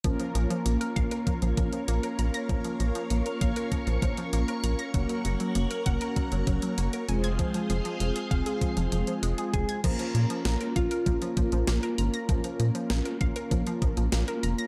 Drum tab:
CC |----------------|----------------|----------------|----------------|
HH |xxxxxxxxxxxxxxxx|xxxxxxxxxxxxxxxx|xxxxxxxxxxxxxxxx|xxxxxxxxxxxxxxxx|
SD |----------------|----------------|----------------|----------------|
BD |o-----o-o-o-----|o-----o-o-o-----|o-----o-o-o-----|o-----o-o-----o-|

CC |x---------------|----------------|
HH |xxxxxxxxxxxxxxxx|xxxxxxxxxxxxxxxx|
SD |----o-------o---|----o-------o---|
BD |o-----o-o-o-----|o-----o-o-o-----|